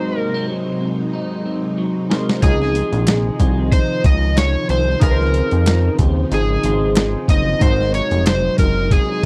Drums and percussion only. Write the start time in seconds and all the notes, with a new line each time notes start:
2.11 snare
2.29 snare
2.42 kick, closed hi-hat
2.62 snare
2.75 closed hi-hat
2.93 closed hi-hat
3.07 snare, clap, closed hi-hat
3.40 kick, closed hi-hat
3.72 kick, closed hi-hat
4.04 kick, closed hi-hat
4.37 snare, clap, closed hi-hat
4.69 closed hi-hat
5.01 kick, closed hi-hat
5.21 snare
5.34 closed hi-hat
5.51 closed hi-hat
5.66 snare, clap, closed hi-hat
5.99 kick, closed hi-hat
6.32 closed hi-hat
6.64 closed hi-hat
6.96 snare, clap, closed hi-hat
7.28 kick, closed hi-hat
7.61 kick, closed hi-hat
7.81 snare
7.94 closed hi-hat
8.11 closed hi-hat
8.26 snare, clap, closed hi-hat
8.58 kick, closed hi-hat
8.91 kick, closed hi-hat